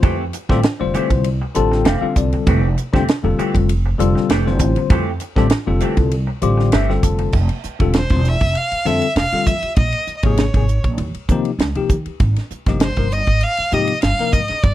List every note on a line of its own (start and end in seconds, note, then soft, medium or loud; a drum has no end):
0.00 0.30 F2 loud
0.00 0.15 D3 medium
0.00 0.22 E3 medium
0.00 0.15 G3 medium
0.00 0.22 A3 medium
0.00 0.15 C4 medium
0.00 0.22 C4 medium
0.00 0.15 F4 medium
0.00 0.22 G4 medium
0.00 0.16 C5 medium
0.00 kick loud
0.00 ride medium
0.33 muted clean electric guitar stroke soft
0.33 hi-hat pedal medium
0.33 ride medium
0.49 0.62 A1 medium
0.49 0.59 D3 medium
0.49 0.59 G3 medium
0.49 0.63 A3 medium
0.49 0.59 C4 medium
0.49 0.63 C4 medium
0.49 0.59 F4 medium
0.49 0.64 G4 medium
0.49 0.59 A4 loud
0.49 kick medium
0.49 snare soft
0.63 0.72 C5 soft
0.63 muted clean electric guitar stroke soft
0.63 snare loud
0.63 ride medium
0.79 0.93 F1 medium
0.79 1.27 D3 medium
0.79 1.27 G3 medium
0.79 1.27 C4 medium
0.79 1.28 F4 medium
0.79 1.28 C5 medium
0.79 muted clean electric guitar stroke soft
0.94 1.10 E3 medium
0.94 1.10 A3 medium
0.94 1.09 C4 medium
0.94 1.09 G4 medium
0.94 hi-hat pedal medium
0.94 ride medium
1.10 1.38 C2 medium
1.10 muted clean electric guitar stroke soft
1.10 kick medium
1.10 ride medium
1.24 ride medium
1.42 muted clean electric guitar stroke soft
1.55 1.83 A1 medium
1.55 1.84 D3 loud
1.55 1.84 G3 medium
1.55 1.85 C4 loud
1.55 1.84 F4 medium
1.55 1.85 A4 loud
1.55 1.71 A5 medium
1.55 hi-hat pedal medium
1.55 ride medium
1.71 1.85 G5 medium
1.71 muted clean electric guitar stroke soft
1.71 snare soft
1.85 2.00 F1 medium
1.85 2.04 E3 medium
1.85 2.05 A3 medium
1.85 2.05 C4 medium
1.85 2.05 G4 medium
1.85 2.00 F5 medium
1.85 snare loud
1.85 ride medium
2.01 2.59 D3 medium
2.01 2.59 G3 medium
2.01 2.59 C4 medium
2.01 2.59 F4 medium
2.01 2.59 A4 medium
2.01 2.15 F5 medium
2.01 muted upright bass stroke soft
2.16 2.31 C2 medium
2.16 2.45 D5 medium
2.16 muted clean electric guitar stroke soft
2.16 kick medium
2.16 hi-hat pedal medium
2.16 ride medium
2.32 muted upright bass stroke soft
2.32 muted clean electric guitar stroke soft
2.32 ride medium
2.46 2.74 F1 loud
2.46 2.66 E3 medium
2.46 2.66 A3 medium
2.46 2.67 C4 medium
2.46 2.67 G4 medium
2.46 kick loud
2.46 ride medium
2.77 muted clean electric guitar stroke soft
2.77 hi-hat pedal medium
2.77 ride medium
2.93 3.06 F1 medium
2.93 3.02 D3 loud
2.93 3.02 G3 medium
2.93 3.07 A3 soft
2.93 3.02 C4 medium
2.93 3.07 C4 medium
2.93 3.03 F4 medium
2.93 3.08 G4 medium
2.93 3.03 G4 loud
2.93 kick medium
2.93 snare soft
3.08 3.17 C5 soft
3.08 muted clean electric guitar stroke soft
3.08 snare loud
3.08 ride medium
3.23 3.37 F1 medium
3.23 3.70 D3 medium
3.23 3.71 G3 medium
3.23 3.71 C4 medium
3.23 3.71 F4 medium
3.23 3.71 A4 medium
3.23 muted clean electric guitar stroke soft
3.38 3.55 E3 medium
3.38 3.54 A3 medium
3.38 3.54 C4 medium
3.38 3.54 G4 medium
3.38 muted upright bass stroke soft
3.38 hi-hat pedal medium
3.38 ride medium
3.54 3.94 F1 medium
3.54 muted clean electric guitar stroke soft
3.54 kick medium
3.54 ride medium
3.69 ride medium
3.86 muted clean electric guitar stroke soft
3.98 4.13 F1 medium
3.98 4.27 D3 loud
3.98 4.28 G3 loud
3.98 4.28 C4 medium
3.98 4.28 F4 medium
3.98 4.28 A4 loud
3.98 hi-hat pedal medium
3.98 ride medium
4.15 muted clean electric guitar stroke soft
4.15 snare soft
4.29 4.60 F1 medium
4.29 4.49 E3 medium
4.29 4.49 A3 medium
4.29 4.49 C4 medium
4.29 4.49 G4 medium
4.29 snare loud
4.29 ride medium
4.46 5.03 D3 medium
4.46 5.03 G3 medium
4.46 5.04 C4 medium
4.46 5.03 F4 medium
4.46 5.04 C5 medium
4.46 snare soft
4.59 4.74 A1 medium
4.59 muted clean electric guitar stroke soft
4.59 kick medium
4.59 hi-hat pedal medium
4.59 ride medium
4.76 muted clean electric guitar stroke soft
4.76 ride medium
4.90 5.17 F2 loud
4.90 5.10 E3 medium
4.90 5.10 A3 medium
4.90 5.10 C4 medium
4.90 5.10 G4 medium
4.90 kick loud
4.90 ride medium
5.20 muted clean electric guitar stroke soft
5.20 hi-hat pedal medium
5.20 ride medium
5.36 5.49 A1 medium
5.36 5.45 D3 medium
5.36 5.46 G3 medium
5.36 5.51 A3 soft
5.36 5.46 C4 medium
5.36 5.51 C4 medium
5.36 5.46 F4 medium
5.36 5.51 G4 medium
5.36 5.46 A4 loud
5.36 kick medium
5.36 snare soft
5.50 muted clean electric guitar stroke soft
5.50 snare loud
5.50 ride medium
5.66 5.80 F1 medium
5.66 6.14 D3 medium
5.66 6.14 G3 medium
5.66 6.14 C4 medium
5.66 6.14 F4 medium
5.66 6.14 A4 medium
5.66 muted clean electric guitar stroke soft
5.80 5.98 E3 medium
5.80 5.96 A3 medium
5.80 5.96 C4 medium
5.80 5.95 G4 medium
5.80 hi-hat pedal medium
5.80 ride medium
5.97 6.25 C2 medium
5.97 muted clean electric guitar stroke soft
5.97 kick medium
5.97 ride medium
6.11 ride medium
6.27 muted clean electric guitar stroke soft
6.41 6.70 A1 medium
6.41 6.71 D3 medium
6.41 6.71 G3 medium
6.41 6.71 C4 medium
6.41 6.71 F4 medium
6.41 6.71 G4 loud
6.41 6.71 D5 medium
6.41 hi-hat pedal medium
6.41 ride medium
6.58 muted clean electric guitar stroke soft
6.58 snare soft
6.72 7.00 G1 medium
6.72 6.92 E3 medium
6.72 6.92 A3 medium
6.72 6.92 C4 medium
6.72 6.92 G4 medium
6.72 6.88 E5 medium
6.72 snare medium
6.72 ride medium
6.89 7.34 D3 medium
6.89 7.34 G3 medium
6.89 7.34 C4 medium
6.89 7.34 F4 medium
6.89 7.34 A4 medium
6.89 7.03 G5 medium
6.89 snare soft
7.03 7.30 F1 medium
7.03 7.32 A5 medium
7.03 muted clean electric guitar stroke soft
7.03 kick medium
7.03 hi-hat pedal medium
7.03 ride medium
7.19 muted clean electric guitar stroke soft
7.19 ride medium
7.33 7.48 F1 medium
7.33 kick medium
7.33 crash medium
7.49 ride medium
7.64 muted upright bass stroke soft
7.64 hi-hat pedal medium
7.79 8.07 E1 medium
7.79 7.98 D3 medium
7.79 7.99 G3 medium
7.79 7.99 C4 medium
7.79 7.99 F4 medium
7.79 7.99 A4 medium
7.79 kick medium
7.79 ride medium
7.94 8.30 C5 medium
7.94 snare loud
7.94 ride medium
8.10 8.38 E1 medium
8.10 8.19 D3 medium
8.10 8.20 G3 medium
8.10 8.20 C4 medium
8.10 8.20 F4 medium
8.10 8.20 C5 medium
8.10 kick medium
8.10 ride medium
8.24 8.32 F4 soft
8.24 8.33 C5 soft
8.24 hi-hat pedal medium
8.28 8.59 E5 medium
8.41 8.54 F1 medium
8.41 kick medium
8.41 ride medium
8.55 8.88 F5 medium
8.55 ride medium
8.72 muted upright bass stroke soft
8.72 ride medium
8.85 9.00 F2 medium
8.85 9.05 D3 medium
8.85 9.05 G3 medium
8.85 9.06 C4 medium
8.85 9.06 F4 medium
8.85 9.06 A4 medium
8.85 9.16 E5 medium
8.85 hi-hat pedal medium
9.02 ride soft
9.16 9.30 E1 medium
9.16 9.24 F4 soft
9.16 9.25 A4 soft
9.16 9.48 F5 medium
9.16 snare medium
9.16 ride medium
9.32 9.51 D3 medium
9.32 9.51 G3 medium
9.32 9.51 C4 medium
9.32 9.51 F4 medium
9.32 9.52 A4 medium
9.32 muted upright bass stroke soft
9.32 snare soft
9.32 ride medium
9.46 9.61 F2 medium
9.46 9.76 E5 medium
9.46 kick medium
9.46 hi-hat pedal medium
9.62 9.70 F4 soft
9.62 9.71 G4 soft
9.62 muted upright bass stroke soft
9.62 ride medium
9.76 9.92 A#1 medium
9.76 10.13 D#5 medium
9.76 kick medium
9.76 ride medium
9.92 ride medium
10.07 muted upright bass stroke soft
10.07 hi-hat pedal medium
10.16 10.25 D#5 soft
10.23 10.51 G#1 medium
10.23 10.43 C3 medium
10.23 10.43 F3 medium
10.23 10.43 A#3 medium
10.23 10.43 D#4 medium
10.23 10.43 G#4 medium
10.23 10.85 C#5 medium
10.23 kick medium
10.23 ride medium
10.37 snare medium
10.37 ride medium
10.54 10.81 G#1 medium
10.54 10.64 C3 medium
10.54 10.64 F3 medium
10.54 10.64 A#3 medium
10.54 10.64 D#4 medium
10.54 10.64 G#4 medium
10.54 kick medium
10.54 ride medium
10.68 10.77 D#4 soft
10.68 10.78 G#4 soft
10.68 hi-hat pedal medium
10.84 10.97 A#1 medium
10.84 kick medium
10.84 ride soft
10.98 11.13 D#2 loud
10.98 ride medium
11.14 muted upright bass stroke soft
11.14 ride soft
11.28 11.49 C3 medium
11.28 11.44 D#3 medium
11.28 11.50 F3 medium
11.28 11.50 A#3 medium
11.28 11.50 D#4 medium
11.28 11.51 G4 loud
11.28 kick medium
11.28 hi-hat pedal medium
11.45 ride soft
11.59 11.74 C#2 medium
11.59 11.68 D#4 soft
11.59 snare medium
11.59 ride medium
11.63 11.69 A#4 soft
11.75 11.94 C3 medium
11.75 11.94 F3 medium
11.75 11.94 A#3 medium
11.75 11.95 D#4 medium
11.75 11.95 G4 medium
11.75 muted upright bass stroke soft
11.75 ride medium
11.89 12.04 D#3 medium
11.89 kick medium
11.89 hi-hat pedal medium
12.06 12.13 D#4 soft
12.06 12.14 G4 soft
12.06 muted upright bass stroke soft
12.06 ride medium
12.20 12.35 G#1 medium
12.20 kick medium
12.20 ride medium
12.36 snare soft
12.36 ride medium
12.50 muted upright bass stroke soft
12.50 hi-hat pedal medium
12.66 12.94 G1 medium
12.66 12.86 C3 medium
12.66 12.86 F3 medium
12.66 12.86 A#3 medium
12.66 12.86 D#4 medium
12.66 12.86 G4 medium
12.66 kick medium
12.66 snare soft
12.66 ride medium
12.80 13.14 C5 medium
12.80 snare loud
12.80 ride medium
12.96 13.25 G1 medium
12.96 13.06 C3 medium
12.96 13.07 F3 medium
12.96 13.07 A#3 medium
12.96 13.07 D#4 medium
12.96 13.07 A#4 medium
12.96 kick medium
12.96 ride soft
13.11 13.20 G4 soft
13.11 13.44 D#5 medium
13.11 hi-hat pedal medium
13.27 13.41 G#1 medium
13.27 kick medium
13.27 ride medium
13.41 13.74 F5 medium
13.41 ride medium
13.57 muted upright bass stroke soft
13.57 ride medium
13.71 13.87 G#2 medium
13.71 13.92 C3 medium
13.71 13.92 F3 medium
13.71 13.92 A#3 medium
13.71 13.93 D#4 medium
13.71 13.93 G4 medium
13.71 14.02 D#5 medium
13.71 hi-hat pedal medium
13.87 ride medium
14.02 14.18 G1 medium
14.02 14.11 D#4 soft
14.02 14.34 F5 medium
14.02 snare medium
14.02 ride medium
14.19 14.38 C3 medium
14.19 14.38 F3 medium
14.19 14.38 A#3 medium
14.19 14.38 D#4 medium
14.19 14.38 A#4 medium
14.19 snare soft
14.19 ride medium
14.32 14.48 G#2 medium
14.32 14.64 D#5 medium
14.32 kick medium
14.32 hi-hat pedal medium
14.48 14.57 D#4 soft
14.48 14.57 G#4 soft
14.48 muted upright bass stroke soft
14.48 snare soft
14.48 ride medium
14.62 14.74 G1 loud
14.62 14.74 D5 medium
14.62 kick medium
14.62 ride medium